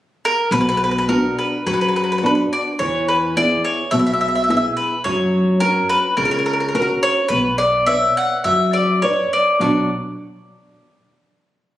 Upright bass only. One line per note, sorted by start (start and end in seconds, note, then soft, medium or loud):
0.51 1.26 B1 medium
1.66 2.40 F#2 medium
2.80 3.53 E2 medium
3.92 4.65 B1 medium
5.05 5.78 F#2 medium
6.17 6.91 C#2 medium
7.30 8.04 B1 medium
8.45 9.20 F#2 medium
9.61 9.89 B1 medium